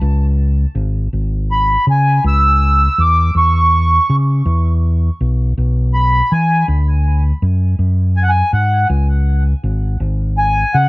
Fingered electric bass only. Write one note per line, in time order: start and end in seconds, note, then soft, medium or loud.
0.01 0.65 C#2 loud
0.75 1.07 G#1 loud
1.13 1.76 G#1 medium
1.87 2.19 C#3 medium
2.24 2.87 C#2 loud
2.98 3.30 E2 medium
3.35 3.98 E2 medium
4.10 4.41 C#3 medium
4.45 5.09 E2 loud
5.21 5.52 B1 medium
5.58 6.20 B1 medium
6.32 6.63 E3 medium
6.68 7.31 D2 loud
7.42 7.74 F#2 medium
7.79 8.42 F#2 medium
8.53 8.84 G#2 medium
8.90 9.53 C#2 loud
9.64 9.95 G#1 medium
10.00 10.63 G#1 medium
10.74 10.89 C#3 medium